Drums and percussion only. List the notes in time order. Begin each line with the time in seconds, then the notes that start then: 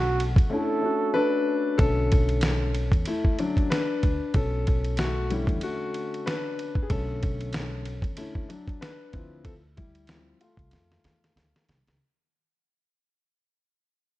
0.20 ride
0.36 kick, ride
1.79 kick, ride
2.12 kick, ride
2.29 ride
2.41 snare, hi-hat pedal, ride
2.75 ride
2.92 kick, ride
3.05 ride
3.25 kick
3.39 ride
3.57 kick, ride
3.72 snare, hi-hat pedal, ride
4.03 kick, ride
4.34 kick, ride
4.67 kick, ride
4.84 ride
4.97 snare, hi-hat pedal, ride
5.30 ride
5.47 kick, ride
5.61 ride
5.94 ride
6.14 ride
6.27 snare, hi-hat pedal, ride
6.59 ride
6.75 kick
6.90 kick, ride
7.23 kick, ride
7.41 ride
7.53 snare, hi-hat pedal, ride
7.85 ride
8.02 kick, ride
8.17 ride
8.35 kick
8.50 ride
8.68 kick, ride
8.82 snare, hi-hat pedal, ride
9.13 kick, ride
9.45 kick, ride
9.77 kick, ride
9.95 ride
10.07 snare, hi-hat pedal, ride
10.41 ride
10.57 kick, ride
10.71 snare, ride
10.92 snare
11.04 snare, ride
11.24 snare, ride
11.37 snare, hi-hat pedal, ride
11.56 snare
11.69 snare, ride
11.87 snare, ride